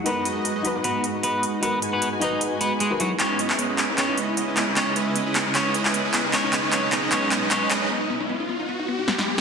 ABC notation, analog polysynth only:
X:1
M:4/4
L:1/16
Q:"Swing 16ths" 1/4=153
K:C#dor
V:1 name="Analog polysynth"
[G,DFBd]2 [G,DFBd]3 [G,DFBd]2 [G,DFBd]8- [G,DFBd]- | [G,DFBd]2 [G,DFBg]3 [G,DFBg] z [G,DFBg]6- [G,DFBg] z2 | [G,CEBd]2 [G,CEBd]3 [G,CEBd]2 [G,CEBd] [G,CEBd]2 [G,CEBd]3 [G,CEBd]2 [G,CEBd] | [G,CEBd]2 [G,CEBd]3 [G,CEBd]2 [G,CEBd] [G,CEBd]2 [G,CEBd]3 [G,CEBd]2 [G,CDBd] |
[G,CDBd]2 [G,CDBd]2 [G,CDBd]2 [G,CDBd]2 [G,CDBd]2 [G,CDBd]2 [G,CDBd]2 [G,CDBd]2 | z16 |]